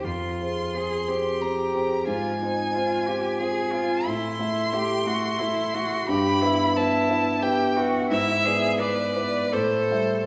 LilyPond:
<<
  \new Staff \with { instrumentName = "Violin" } { \time 3/4 \key f \dorian \tempo 4 = 89 c'''2 bes''4 | aes''2 aes''4 | \key e \minor c'''2. | b''4 a''4 g''8 r8 |
e''4 d''4 c''4 | }
  \new Staff \with { instrumentName = "Cello" } { \time 3/4 \key f \dorian f'4 aes'8 g'4. | f'8 ees'8 f'8 g'8 aes'8 f'8 | \key e \minor e'4 g'8 fis'8 e'8 fis'8 | g'8 e'8 e'4 g'8 fis'8 |
e'8 gis'8 b'8 b'8 a'4 | }
  \new Staff \with { instrumentName = "Grand piano" } { \time 3/4 \key f \dorian f,8 <c' aes' c''>8 <c' aes' c''>8 <c' aes' c''>8 <c' aes' c''>8 <c' aes' c''>8 | aes,8 <c' f' c''>8 <c' f' c''>8 <c' f' c''>8 <c' f' c''>8 <c' f' c''>8 | \key e \minor a,8 <a e' e''>8 <a e' e''>8 <a e' e''>8 <a e' e''>8 <a e' e''>8 | g,8 <b e' e''>8 <b e' e''>8 <b e' e''>8 <b e' e''>8 <b e' e''>8 |
gis,8 <b e' d''>8 <b e' d''>8 <b e' d''>8 a,8 <g e' e''>8 | }
>>